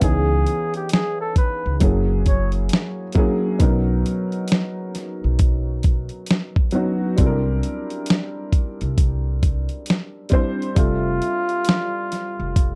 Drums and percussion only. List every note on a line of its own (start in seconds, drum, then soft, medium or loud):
0.01 kick loud
0.01 closed hi-hat medium
0.47 closed hi-hat medium
0.74 closed hi-hat soft
0.89 closed hi-hat medium
0.93 snare loud
1.36 kick medium
1.36 closed hi-hat medium
1.80 kick medium
1.80 closed hi-hat loud
2.26 kick medium
2.26 closed hi-hat medium
2.52 closed hi-hat soft
2.69 closed hi-hat medium
2.73 snare loud
3.12 kick medium
3.12 closed hi-hat medium
3.60 kick loud
3.60 closed hi-hat medium
4.06 closed hi-hat medium
4.32 closed hi-hat soft
4.48 closed hi-hat medium
4.52 snare loud
4.95 snare soft
4.95 closed hi-hat medium
5.39 kick medium
5.39 closed hi-hat medium
5.83 kick medium
5.83 closed hi-hat medium
6.09 closed hi-hat soft
6.26 closed hi-hat medium
6.31 snare loud
6.56 kick medium
6.71 closed hi-hat medium
7.18 kick loud
7.18 closed hi-hat medium
7.63 closed hi-hat medium
7.90 closed hi-hat soft
8.06 closed hi-hat medium
8.10 snare loud
8.53 kick medium
8.53 closed hi-hat medium
8.81 closed hi-hat soft
8.98 kick medium
8.98 closed hi-hat medium
9.43 kick medium
9.43 closed hi-hat medium
9.69 closed hi-hat soft
9.86 closed hi-hat medium
9.90 snare loud
10.29 kick medium
10.29 closed hi-hat medium
10.62 closed hi-hat soft
10.76 kick loud
10.76 closed hi-hat medium
11.22 closed hi-hat medium
11.49 closed hi-hat soft
11.65 closed hi-hat medium
11.69 snare loud
12.12 snare soft
12.12 closed hi-hat medium
12.56 kick medium
12.56 closed hi-hat medium